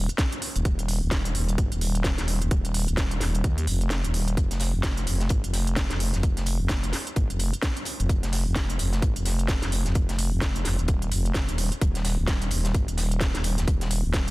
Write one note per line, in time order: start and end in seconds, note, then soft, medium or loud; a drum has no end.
0.09 closed hi-hat soft
0.18 kick loud
0.18 snare loud
0.18 closed hi-hat medium
0.32 closed hi-hat medium
0.42 open hi-hat loud
0.56 0.64 D#1 medium
0.56 closed hi-hat soft
0.65 1.00 D#1 loud
0.65 kick loud
0.65 closed hi-hat medium
0.79 closed hi-hat medium
0.88 open hi-hat loud
1.02 1.33 D#1 medium
1.11 kick loud
1.11 snare loud
1.11 closed hi-hat medium
1.25 closed hi-hat medium
1.35 1.57 D#1 loud
1.35 open hi-hat medium
1.49 closed hi-hat soft
1.58 1.70 G1 loud
1.58 kick loud
1.58 closed hi-hat medium
1.72 2.16 D#1 loud
1.72 closed hi-hat medium
1.81 open hi-hat loud
1.95 closed hi-hat soft
2.04 kick loud
2.04 snare loud
2.04 closed hi-hat medium
2.18 2.39 D#1 medium
2.18 snare soft
2.18 closed hi-hat medium
2.28 open hi-hat loud
2.42 2.50 D#1 loud
2.42 closed hi-hat soft
2.51 2.86 D#1 loud
2.51 kick loud
2.51 closed hi-hat medium
2.65 closed hi-hat medium
2.74 open hi-hat loud
2.88 3.19 D#1 medium
2.88 closed hi-hat soft
2.97 kick loud
2.97 snare loud
2.97 closed hi-hat medium
3.11 closed hi-hat medium
3.20 3.43 D#1 loud
3.20 snare soft
3.20 open hi-hat loud
3.35 closed hi-hat soft
3.44 3.66 D#2 medium
3.44 kick loud
3.44 closed hi-hat medium
3.58 closed hi-hat medium
3.67 4.02 F1 loud
3.67 open hi-hat loud
3.81 closed hi-hat soft
3.90 snare loud
3.90 closed hi-hat medium
4.04 4.36 D#1 loud
4.04 closed hi-hat medium
4.14 open hi-hat loud
4.28 closed hi-hat soft
4.37 4.72 F1 loud
4.37 kick loud
4.37 closed hi-hat medium
4.51 snare soft
4.51 closed hi-hat medium
4.60 snare medium
4.60 closed hi-hat medium
4.60 open hi-hat loud
4.74 5.06 F1 medium
4.83 kick loud
4.83 snare loud
4.83 closed hi-hat medium
4.97 closed hi-hat medium
5.07 5.29 F1 medium
5.07 closed hi-hat medium
5.07 open hi-hat loud
5.20 snare soft
5.20 closed hi-hat soft
5.29 5.42 G#1 medium
5.29 kick loud
5.29 closed hi-hat medium
5.44 5.88 F1 loud
5.44 closed hi-hat medium
5.53 snare soft
5.53 closed hi-hat medium
5.53 open hi-hat loud
5.67 closed hi-hat soft
5.76 kick loud
5.76 snare loud
5.76 closed hi-hat medium
5.90 6.12 F1 medium
5.90 snare soft
5.90 closed hi-hat medium
6.00 closed hi-hat medium
6.00 open hi-hat loud
6.14 6.22 F1 medium
6.14 snare soft
6.14 closed hi-hat soft
6.23 6.58 F1 loud
6.23 kick loud
6.23 closed hi-hat medium
6.37 snare soft
6.37 closed hi-hat medium
6.46 closed hi-hat medium
6.46 open hi-hat loud
6.60 6.92 F1 medium
6.69 kick loud
6.69 snare loud
6.69 closed hi-hat medium
6.84 closed hi-hat medium
6.93 snare soft
6.93 closed hi-hat medium
6.93 open hi-hat loud
7.07 closed hi-hat soft
7.16 7.28 G#1 loud
7.16 kick loud
7.16 closed hi-hat medium
7.30 7.51 F1 loud
7.30 closed hi-hat medium
7.39 closed hi-hat medium
7.39 open hi-hat loud
7.53 closed hi-hat soft
7.62 kick loud
7.62 snare loud
7.62 closed hi-hat medium
7.77 closed hi-hat medium
7.77 closed hi-hat soft
7.85 closed hi-hat medium
7.85 open hi-hat loud
8.00 8.08 F1 loud
8.00 closed hi-hat soft
8.09 8.44 F1 loud
8.09 kick loud
8.09 closed hi-hat medium
8.23 snare soft
8.23 closed hi-hat soft
8.33 snare soft
8.33 closed hi-hat medium
8.33 open hi-hat loud
8.46 8.78 F1 medium
8.55 kick loud
8.55 snare loud
8.55 closed hi-hat medium
8.70 closed hi-hat medium
8.79 9.01 F1 loud
8.79 closed hi-hat medium
8.79 open hi-hat loud
8.93 snare medium
8.93 closed hi-hat soft
9.02 9.14 G#1 loud
9.02 kick loud
9.02 closed hi-hat medium
9.16 9.60 F1 medium
9.16 closed hi-hat medium
9.25 snare soft
9.25 closed hi-hat medium
9.25 open hi-hat loud
9.39 closed hi-hat soft
9.48 kick loud
9.48 snare loud
9.48 closed hi-hat medium
9.62 9.84 F1 medium
9.62 snare soft
9.62 closed hi-hat medium
9.72 closed hi-hat medium
9.72 open hi-hat loud
9.86 9.94 F1 loud
9.86 snare soft
9.86 closed hi-hat soft
9.95 10.30 F1 loud
9.95 kick loud
9.95 closed hi-hat medium
10.09 snare medium
10.09 closed hi-hat soft
10.19 closed hi-hat medium
10.19 open hi-hat loud
10.32 10.64 F1 medium
10.41 kick loud
10.41 snare loud
10.41 closed hi-hat medium
10.56 closed hi-hat soft
10.65 10.77 F1 loud
10.65 snare soft
10.65 closed hi-hat medium
10.65 open hi-hat loud
10.79 11.10 D#1 medium
10.79 closed hi-hat soft
10.88 kick loud
10.88 closed hi-hat medium
11.02 closed hi-hat soft
11.12 11.46 F1 loud
11.12 closed hi-hat medium
11.12 open hi-hat loud
11.25 closed hi-hat soft
11.34 kick loud
11.34 snare loud
11.34 closed hi-hat medium
11.49 11.70 D#1 loud
11.49 closed hi-hat medium
11.49 closed hi-hat soft
11.58 closed hi-hat medium
11.58 open hi-hat loud
11.72 closed hi-hat soft
11.81 12.16 D#1 loud
11.81 kick loud
11.81 closed hi-hat medium
11.95 snare soft
11.95 closed hi-hat soft
12.05 snare soft
12.05 closed hi-hat medium
12.05 open hi-hat loud
12.18 12.50 D#1 loud
12.27 kick loud
12.27 snare loud
12.27 closed hi-hat medium
12.42 closed hi-hat medium
12.51 12.73 D#1 loud
12.51 closed hi-hat medium
12.51 open hi-hat loud
12.65 snare medium
12.65 closed hi-hat soft
12.74 12.86 G1 loud
12.74 kick loud
12.74 closed hi-hat medium
12.88 13.32 D#1 medium
12.88 closed hi-hat soft
12.97 snare soft
12.97 closed hi-hat medium
12.97 open hi-hat loud
13.11 closed hi-hat soft
13.21 kick loud
13.21 snare loud
13.21 closed hi-hat medium
13.34 13.56 D#1 medium
13.34 snare soft
13.34 closed hi-hat soft
13.44 closed hi-hat medium
13.44 open hi-hat loud
13.58 13.66 D#1 loud
13.58 snare soft
13.58 closed hi-hat soft
13.68 14.02 D#1 loud
13.68 kick loud
13.68 closed hi-hat medium
13.81 snare medium
13.81 closed hi-hat soft
13.91 closed hi-hat medium
13.91 open hi-hat loud
14.04 14.31 D#1 loud
14.13 kick loud
14.13 snare loud
14.13 closed hi-hat medium
14.28 closed hi-hat medium